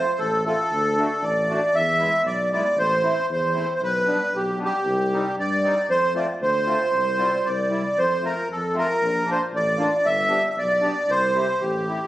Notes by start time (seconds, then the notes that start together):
Already playing: C5
0.18 A1 A4
0.45 A3 C4 F4 A4
0.71 D2
0.98 A3 D4 F#4
1.22 A1 D5
1.48 A3 D4 F#4
1.74 E2 E5
1.98 G#3 B3 E4
2.25 B1 D5
2.51 G#3 B3 E4 D5
2.77 A1 C5
3.02 A3 C4 E4
3.29 E2 C5
3.53 A3 C4 E4
3.75 C5
3.81 B1 B4
4.06 G3 B3 D4
4.33 B1 G4
4.58 G3 B3 D4
4.64 G4
4.86 C2
5.12 G3 C4 D#4
5.37 G2 D5
5.63 G3 C4 D#4
5.88 F2 C5
6.15 A3 C4 F4 D5
6.41 D2 C5
6.66 A3 C4 F4
6.92 C2
7.17 G3 C4 F4
7.44 C2 D5
7.69 G3 C4 E4
7.98 F2 C5
8.21 A3 C4 F4
8.25 A#4
8.49 F2 A4
8.74 A3 C4 F4
8.79 A#4
9.02 A#1
9.25 A#3 D4 F4
9.31 C5
9.53 A1 D5
9.77 A#3 D4 F4
10.04 G1 E5
10.29 B3 D4 G4
10.50 E5
10.56 B1 D5
10.81 B3 D4 G4
11.08 C2 C5
11.34 C4 E4 G4
11.61 A1 G4
11.88 C4 E4 G4